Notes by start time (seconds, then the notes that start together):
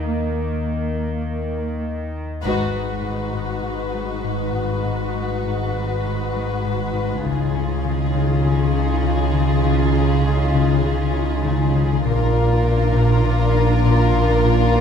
Already playing: D#2 D#3
0.05 A#3
2.43 G#1 G#2 D#4 F#4 B4
2.74 G#3
3.04 G#2
3.33 G#2
3.63 G#2
3.94 G#3
4.23 G#2
4.54 G#2
4.84 G#2
5.15 G#3
5.45 G#2
5.75 G#2
6.05 G#2
6.36 G#3
6.65 G#2
6.95 G#2
7.23 C#2 C#3 D#4 F4 G#4
7.54 C#4
7.84 C#3
8.14 C#3
8.43 C#3
8.72 C#4
9.02 C#3
9.34 C#3
9.64 C#3
9.94 C#4
10.24 C#3
10.54 C#3
10.83 C#3
11.13 C#4
11.44 C#3
11.73 C#3
12.04 A#1 A#2 D4 F4 A#4
12.34 A#3
12.64 A#2
12.94 A#2
13.24 A#2
13.54 A#3
13.85 A#2
14.15 A#2
14.44 A#2
14.74 A#3